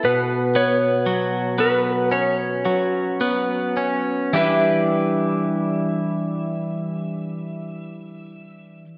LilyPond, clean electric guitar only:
\new Staff \with { instrumentName = "Clean electric guitar" } { \time 4/4 \key e \dorian \tempo 4 = 51 b,8 b8 fis8 b8 cis'8 fis8 b8 cis'8 | <e g d' e' b'>1 | }